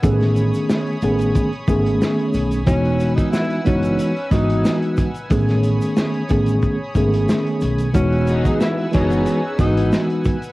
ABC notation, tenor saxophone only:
X:1
M:4/4
L:1/16
Q:"Swing 16ths" 1/4=91
K:E
V:1 name="Tenor saxophone"
z16 | C3 D E2 C4 D3 z3 | z16 | C3 D E2 C4 D3 z3 |]